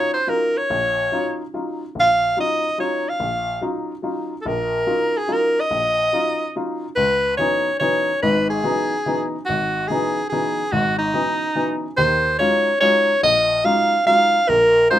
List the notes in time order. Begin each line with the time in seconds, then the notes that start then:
Already playing: F#3 C#4 D#4 F4
0.14 C5
0.27 F#3 C#4 D#4 F4 A#4
0.58 C#5
0.70 A#1
1.12 F#3 C#4 D#4 F4
1.54 F#3 C#4 D#4 F4
1.95 A#1
2.00 F5
2.37 F#3 C#4 D#4 F4 D#5
2.78 F#3 C#4 D#4 F4 C#5
3.09 F5
3.20 A#1
3.61 F#3 C#4 D#4 F4
4.02 F#3 C#4 D#4 F4
4.41 A4
4.46 A#1 A#4
4.87 F#3 C#4 D#4 F4
5.17 G#4
5.28 F#3 C#4 D#4 F4
5.33 A#4
5.60 D#5
5.71 A#1
6.13 F#3 C#4 D#4 F4
6.56 F#3 C#4 D#4 F4
6.96 C#2 B4
7.37 E3 F#3 B3 C#4 D#4 C#5
7.80 E3 F#3 B3 C#4 D#4 C#5
8.22 G#1 G#2 B4
8.50 G#4
8.64 E3 F#3 B3 C#4 D#4
9.06 E3 F#3 B3 C#4 D#4
9.46 G#1 F#4
9.88 E3 F#3 B3 C#4 D#4 G#4
10.30 E3 F#3 B3 C#4 D#4 G#4
10.72 G#1 G#2 F#4
10.99 D#4
11.14 E3 F#3 B3 C#4 D#4
11.55 E3 F#3 B3 C#4 D#4
11.97 D#2 D#3 C5
12.38 F#3 G#3 C#4 D#4 F4 C#5
12.80 F#3 G#3 C#4 D#4 F4 C#5
13.23 A#1 D#5
13.64 F#3 G#3 C#4 D#4 F4 F5
14.06 F#3 G#3 C#4 D#4 F4 F5
14.49 A#1 A#4
14.90 F#3 G#3 C#4 D#4 F4 C5